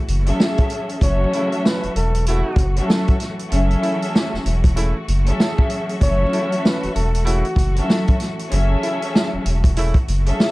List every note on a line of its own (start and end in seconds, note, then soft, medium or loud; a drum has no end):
0.00 0.98 E3 medium
0.00 0.96 A3 medium
0.00 0.96 F#4 loud
0.08 0.32 F#1 loud
0.08 closed hi-hat medium
0.26 0.96 F#3 loud
0.26 0.96 C#4 loud
0.26 0.97 G#4 medium
0.26 0.97 A4 loud
0.26 0.97 E5 loud
0.26 closed hi-hat medium
0.40 snare loud
0.58 kick loud
0.58 closed hi-hat soft
0.70 closed hi-hat medium
0.89 closed hi-hat medium
1.00 1.25 F#1 loud
1.00 5.96 E3 medium
1.00 2.48 F#3 loud
1.00 10.51 A3 medium
1.00 2.48 C#4 loud
1.00 10.51 F#4 loud
1.00 2.49 F#4 loud
1.00 2.49 A4 loud
1.00 1.61 C#5 loud
1.00 kick loud
1.00 closed hi-hat medium
1.04 2.49 E5 loud
1.33 1.49 C#3 medium
1.33 1.49 A3 medium
1.33 1.49 E4 loud
1.33 closed hi-hat medium
1.52 closed hi-hat soft
1.65 1.92 B4 medium
1.65 snare loud
1.83 1.88 E1 medium
1.83 closed hi-hat soft
1.95 2.43 E1 loud
1.95 2.23 A4 medium
1.95 closed hi-hat medium
2.15 closed hi-hat medium
2.26 2.70 C#3 medium
2.26 2.70 A3 loud
2.26 2.70 E4 loud
2.26 2.74 F#4 medium
2.26 closed hi-hat loud
2.56 2.81 F#1 loud
2.56 kick loud
2.56 closed hi-hat medium
2.76 3.33 F#3 loud
2.76 3.34 C#4 loud
2.76 2.87 F#4 medium
2.76 3.34 F#4 loud
2.76 3.34 A4 medium
2.76 3.34 E5 loud
2.76 closed hi-hat medium
2.88 3.16 A4 medium
2.88 snare loud
3.08 kick loud
3.08 closed hi-hat soft
3.20 snare soft
3.20 closed hi-hat medium
3.39 closed hi-hat medium
3.50 3.75 F#1 loud
3.50 4.97 F#3 loud
3.50 4.97 C#4 loud
3.50 4.98 G#4 loud
3.50 4.98 A4 loud
3.50 4.98 E5 loud
3.50 closed hi-hat loud
3.71 closed hi-hat soft
3.83 3.99 C#3 medium
3.83 3.99 A3 medium
3.83 3.99 E4 loud
3.83 closed hi-hat medium
4.02 closed hi-hat medium
4.15 snare loud
4.33 4.38 E1 medium
4.33 snare soft
4.45 4.93 E1 medium
4.45 closed hi-hat medium
4.64 kick loud
4.64 closed hi-hat medium
4.76 4.96 C#3 loud
4.76 4.96 A3 loud
4.76 4.96 E4 loud
4.76 closed hi-hat loud
5.08 5.32 F#1 loud
5.08 closed hi-hat medium
5.26 5.96 F#3 loud
5.26 5.96 C#4 loud
5.26 5.97 G#4 medium
5.26 5.97 A4 loud
5.26 5.97 E5 loud
5.26 closed hi-hat medium
5.40 snare loud
5.58 kick loud
5.70 closed hi-hat medium
5.89 closed hi-hat medium
6.01 6.25 F#1 loud
6.01 10.51 E3 medium
6.01 7.48 F#3 loud
6.01 7.48 C#4 loud
6.01 7.48 F#4 loud
6.01 7.49 A4 loud
6.01 6.61 C#5 loud
6.01 7.49 E5 loud
6.01 kick loud
6.01 closed hi-hat loud
6.32 6.48 C#3 medium
6.32 6.48 A3 medium
6.32 6.48 E4 medium
6.32 closed hi-hat medium
6.52 closed hi-hat medium
6.64 6.92 B4 medium
6.64 snare loud
6.83 6.88 E1 medium
6.83 closed hi-hat soft
6.95 7.43 E1 medium
6.95 7.23 A4 medium
6.95 closed hi-hat medium
7.14 closed hi-hat medium
7.25 7.45 C#3 loud
7.25 7.45 A3 loud
7.25 7.45 E4 loud
7.25 7.73 F#4 medium
7.25 closed hi-hat loud
7.45 closed hi-hat soft
7.56 7.81 F#1 loud
7.56 kick loud
7.56 closed hi-hat medium
7.76 8.33 F#3 loud
7.76 8.34 C#4 loud
7.76 7.88 F#4 medium
7.76 8.34 F#4 loud
7.76 8.34 A4 medium
7.76 8.34 E5 loud
7.76 closed hi-hat medium
7.89 8.17 A4 medium
7.89 snare loud
8.08 kick loud
8.08 closed hi-hat soft
8.20 snare soft
8.20 closed hi-hat medium
8.39 closed hi-hat medium
8.50 8.75 F#1 loud
8.50 9.97 F#3 loud
8.50 9.97 C#4 loud
8.50 9.98 G#4 loud
8.50 9.98 A4 loud
8.50 9.98 E5 loud
8.50 closed hi-hat medium
8.83 8.99 C#3 medium
8.83 8.99 A3 medium
8.83 8.99 E4 loud
8.83 closed hi-hat medium
9.02 closed hi-hat medium
9.15 snare loud
9.33 9.38 E1 soft
9.45 9.93 E1 loud
9.45 closed hi-hat medium
9.64 kick loud
9.64 closed hi-hat medium
9.76 9.97 C#3 loud
9.76 9.97 A3 loud
9.76 9.97 E4 loud
9.76 closed hi-hat loud
9.94 kick medium
9.94 closed hi-hat soft
10.08 10.32 F#1 loud
10.08 closed hi-hat medium
10.26 10.51 F#3 loud
10.26 10.51 C#4 loud
10.26 10.51 G#4 medium
10.26 10.51 A4 loud
10.26 10.51 E5 loud
10.26 closed hi-hat medium
10.40 snare loud